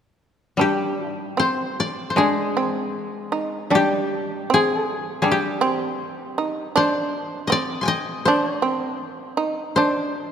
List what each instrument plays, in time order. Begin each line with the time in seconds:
0.57 koto G3 G4, shamisen D4
1.11 koto D#4
1.37 shamisen C4, koto C5
1.80 koto D5
2.10 koto C5
2.16 koto G#3 G#4, shamisen D4
2.57 shamisen C4
3.32 shamisen D#4
3.70 koto G3, shamisen D4
3.75 koto G4
4.50 shamisen C4, koto G#4
5.22 koto G3 G#4, shamisen D4
5.31 koto G4
5.61 shamisen C4
6.38 shamisen D#4
6.76 shamisen D4, koto C5
7.47 shamisen C4, koto D#5
7.52 koto D5
7.81 koto G#5 C6
7.85 koto D#5 G5
8.25 shamisen D4, koto C5
8.45 koto C#5
8.58 shamisen C4, koto D5
9.37 shamisen D#4
9.76 shamisen D4, koto C5